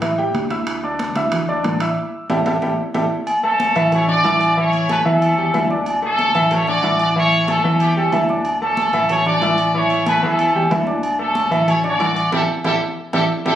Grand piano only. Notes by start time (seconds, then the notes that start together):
0.01 E3 E4 E5
0.18 G3 G4 G5
0.50 E4 E5 E6
0.83 D4 D5 D6
1.16 E4 E5 E6
1.49 D4 D5 D6
1.81 E4 E5 E6
2.30 E4 G4 A4
2.46 E4 G4 A4
2.62 E4 G4 A4
2.94 E4 G4 A4
3.43 A3 A4 A5
3.76 E3 E4 E5
3.92 A3 A4 A5
4.08 D4 D5 D6
4.24 E4 E5 E6
4.57 E3 E4 E5
4.89 A3 A4 A5
5.05 E3 E4 E5
5.38 G3 G4 G5
5.54 E3 E4 E5
5.70 D4 D5 D6
6.02 A3 A4 A5
6.35 E3 E4 E5
6.51 A3 A4 A5
6.68 D4 D5 D6
6.84 E4 E5 E6
7.16 E3 E4 E5
7.48 A3 A4 A5
7.64 E3 E4 E5
7.96 G3 G4 G5
8.13 E3 E4 E5
8.29 D4 D5 D6
8.61 A3 A4 A5
8.93 E3 E4 E5
9.10 A3 A4 A5
9.26 D4 D5 D6
9.42 E4 E5 E6
9.75 E3 E4 E5
10.07 A3 A4 A5
10.23 E3 E4 E5
10.55 G3 G4 G5
10.71 E3 E4 E5
10.86 D4 D5 D6
11.19 A3 A4 A5
11.51 E3 E4 E5
11.67 A3 A4 A5
11.84 D4 D5 D6
12.00 E4 E5 E6
12.32 E4 G4 A4
12.64 E4 G4 A4
13.13 E4 G4 A4
13.45 E4 G4 A4